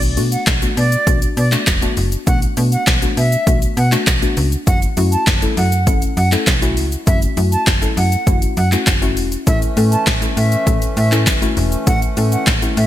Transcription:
Already playing: B1
0.02 closed hi-hat, shaker
0.17 B2 A3 B3 D4 F#4, open hi-hat, shaker
0.32 F#5, closed hi-hat, shaker
0.47 B1, kick, snare, clap, closed hi-hat, shaker
0.62 A3 B3 D4 F#4, closed hi-hat, shaker
0.77 B2 D5, open hi-hat, shaker
0.92 closed hi-hat, shaker
1.07 B1 A3 B3 D4 F#4, kick, closed hi-hat, shaker
1.22 closed hi-hat, shaker
1.37 B2 D5, open hi-hat, shaker
1.52 A3 B3 D4 F#4, clap, closed hi-hat, shaker
1.67 E1, kick, snare, clap, closed hi-hat, shaker
1.82 A3 B3 D4 F#4, closed hi-hat, shaker
1.97 F#1, open hi-hat, shaker
2.12 closed hi-hat, shaker
2.27 B1 A3 B3 D4 F#4 F#5, kick, closed hi-hat, shaker
2.42 closed hi-hat, shaker
2.57 B2 A3 B3 D4 F#4, open hi-hat, shaker
2.72 F#5, closed hi-hat, shaker
2.87 B1, kick, snare, clap, closed hi-hat, shaker
3.02 A3 B3 D4 F#4, closed hi-hat, shaker
3.17 B2 E5, open hi-hat, shaker
3.32 closed hi-hat, shaker
3.47 B1 A3 B3 D4 F#4, kick, closed hi-hat, shaker
3.62 closed hi-hat, shaker
3.77 B2 F#5, open hi-hat, shaker
3.92 A3 B3 D4 F#4, clap, closed hi-hat, shaker
4.07 B1, kick, snare, clap, closed hi-hat, shaker
4.22 A3 B3 D4 F#4, closed hi-hat, shaker
4.37 C#2, open hi-hat, shaker
4.52 closed hi-hat, shaker
4.67 F#1 A3 C#4 E4 F#4 F#5, kick, closed hi-hat, shaker
4.82 closed hi-hat, shaker
4.97 F#2 A3 C#4 E4 F#4, open hi-hat, shaker
5.12 A5, closed hi-hat, shaker
5.27 F#1, kick, snare, clap, closed hi-hat, shaker
5.42 A3 C#4 E4 A4, closed hi-hat, shaker
5.57 F#2 F#5, open hi-hat, shaker
5.72 closed hi-hat, shaker
5.87 F#1 A3 C#4 E4 A4, kick, closed hi-hat, shaker
6.02 closed hi-hat, shaker
6.17 F#2 F#5, open hi-hat, shaker
6.32 A3 C#4 E4 A4, clap, closed hi-hat, shaker
6.47 B1, kick, snare, clap, closed hi-hat, shaker
6.62 A3 C#4 E4 F#4, closed hi-hat, shaker
6.77 C#2, open hi-hat, shaker
6.92 closed hi-hat, shaker
7.07 F#1 A3 C#4 E4 F#4 E5, kick, closed hi-hat, shaker
7.22 closed hi-hat, shaker
7.37 F#2 A3 C#4 E4 F#4, open hi-hat, shaker
7.52 A5, closed hi-hat, shaker
7.67 F#1, kick, snare, clap, closed hi-hat, shaker
7.82 A3 C#4 E4 A4, closed hi-hat, shaker
7.97 F#2 F#5, open hi-hat, shaker
8.12 closed hi-hat, shaker
8.27 F#1 A3 C#4 E4 F#4, kick, closed hi-hat, shaker
8.42 closed hi-hat, shaker
8.57 F#2 F#5, open hi-hat, shaker
8.72 A3 C#4 E4 F#4, clap, closed hi-hat, shaker
8.87 F#1, kick, snare, clap, closed hi-hat, shaker
9.02 A3 C#4 E4 F#4, closed hi-hat, shaker
9.17 E1, open hi-hat, shaker
9.32 closed hi-hat, shaker
9.47 A1 E3 A3 C#4 E4 A4 E5, kick, closed hi-hat, shaker
9.62 closed hi-hat, shaker
9.77 A2 A3 C#4 E4 A4, open hi-hat, shaker
9.92 A5, closed hi-hat, shaker
10.07 A1, kick, snare, clap, closed hi-hat, shaker
10.22 A3 C#4 E4 A4, closed hi-hat, shaker
10.37 A2 E5, open hi-hat, shaker
10.52 closed hi-hat, shaker
10.67 A1 A3 C#4 E4 A4, kick, closed hi-hat, shaker
10.82 closed hi-hat, shaker
10.97 A2 E5, open hi-hat, shaker
11.12 A3 C#4 E4 A4, clap, closed hi-hat, shaker
11.27 F#1, kick, snare, clap, closed hi-hat, shaker
11.42 A3 C#4 E4 F#4, closed hi-hat, shaker
11.57 E1, open hi-hat, shaker
11.72 closed hi-hat, shaker
11.87 A1 A3 C#4 E4 A4 F#5, kick, closed hi-hat, shaker
12.02 closed hi-hat, shaker
12.17 A2 A3 C#4 E4 A4, open hi-hat, shaker
12.32 F#5, closed hi-hat, shaker
12.47 A1, kick, snare, clap, closed hi-hat, shaker
12.62 A3 C#4 E4 G4, closed hi-hat, shaker
12.77 A2 E5, open hi-hat, shaker

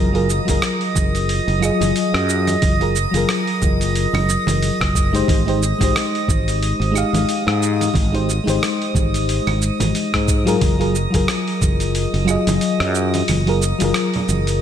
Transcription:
Already playing: F#1 G#4 A#4 D#5 D#6
0.13 F#3 F4 G#4 A#4, open hi-hat
0.30 cabasa
0.45 F#1 F#3 F4 G#4, kick, open hi-hat, muted conga, cabasa
0.51 A#4
0.62 cross-stick, open hi-hat, cabasa
0.81 open hi-hat
0.95 F#1, kick, high conga, cabasa
1.15 open hi-hat, cabasa
1.29 open hi-hat, cabasa
1.47 F#1, open hi-hat
1.60 F#3 F4 G#4, cabasa, claves
1.65 D#5
1.81 F#1, open hi-hat, muted conga, high conga, cabasa
1.96 open hi-hat, cabasa
2.14 F#2, cross-stick, open hi-hat
2.29 cabasa
2.47 open hi-hat, muted conga, cabasa
2.62 F#1, kick, open hi-hat, high conga, cabasa
2.80 F#3 F4 G#4 A#4, open hi-hat, muted conga
2.96 cabasa
3.11 F#1 F#3 F4, open hi-hat, muted conga, cabasa
3.15 G#4 A#4
3.29 cross-stick, open hi-hat, cabasa
3.47 open hi-hat
3.62 F#1, kick, high conga, cabasa
3.81 open hi-hat, cabasa
3.95 open hi-hat, cabasa
4.13 F#1, open hi-hat, muted conga, low conga, claves
4.29 muted conga, cabasa
4.47 F#1, open hi-hat, high conga, low conga, cabasa
4.62 open hi-hat, cabasa
4.81 F#1, kick, cross-stick, open hi-hat
4.95 kick, cabasa
5.13 G#3 D#4 G4 C5, open hi-hat, cabasa
5.28 G#1, kick, open hi-hat, high conga, cabasa
5.46 G#3 D#4 G4 C5, open hi-hat
5.63 cabasa
5.78 G#1 G#3 D#4 G4, kick, open hi-hat, muted conga, cabasa
5.84 C5
5.96 cross-stick, open hi-hat, cabasa
6.15 open hi-hat
6.28 G#1, kick, high conga, cabasa
6.48 open hi-hat, cabasa
6.63 open hi-hat, cabasa
6.80 G#1, open hi-hat
6.92 G#3 D#4 G4, claves
6.96 F5, cabasa
7.13 G#1, open hi-hat, muted conga, high conga, cabasa
7.29 open hi-hat, cabasa
7.47 G#2, cross-stick, open hi-hat
7.63 cabasa
7.81 open hi-hat, muted conga, cabasa
7.94 G#1, kick, open hi-hat, high conga, cabasa
8.12 G#3 D#4 G4 C5, open hi-hat, muted conga
8.30 cabasa
8.44 G#1 G#3 D#4 G4, muted conga
8.48 C5, open hi-hat, cabasa
8.63 cross-stick, open hi-hat, cabasa
8.82 open hi-hat
8.95 G#1, kick, high conga, cabasa
9.14 open hi-hat, cabasa
9.29 open hi-hat, cabasa
9.47 G#1, open hi-hat, muted conga, low conga, claves
9.62 cabasa
9.80 G#1, open hi-hat, high conga, low conga, cabasa
9.95 open hi-hat, cabasa
10.14 G#2, kick, cross-stick, open hi-hat
10.28 kick, cabasa
10.45 F#3 F4 G#4 A#4, open hi-hat, cabasa
10.61 F#1, kick, open hi-hat, high conga, cabasa
10.78 F#3 F4 G#4 A#4, open hi-hat
10.95 cabasa
11.10 F#1 F#3 F4 G#4, kick, open hi-hat
11.14 A#4, muted conga, cabasa
11.28 cross-stick, open hi-hat, cabasa
11.48 open hi-hat
11.62 F#1, kick, high conga, cabasa
11.80 open hi-hat, cabasa
11.95 open hi-hat, cabasa
12.14 F#1, open hi-hat
12.25 F#3 F4 G#4, cabasa, claves
12.31 D#5
12.47 F#1, open hi-hat, muted conga, high conga, cabasa
12.61 open hi-hat, cabasa
12.80 F#2, cross-stick, open hi-hat
12.95 cabasa
13.14 open hi-hat, muted conga, cabasa
13.28 F#1, open hi-hat, high conga, cabasa, claves
13.46 F#3 F4 G#4 A#4, open hi-hat, muted conga
13.62 cabasa
13.79 F#1 F#3 F4 G#4, open hi-hat, muted conga, cabasa
13.84 A#4
13.94 cross-stick, open hi-hat, cabasa
14.14 open hi-hat, low conga
14.28 F#1, high conga, cabasa
14.47 open hi-hat, cabasa

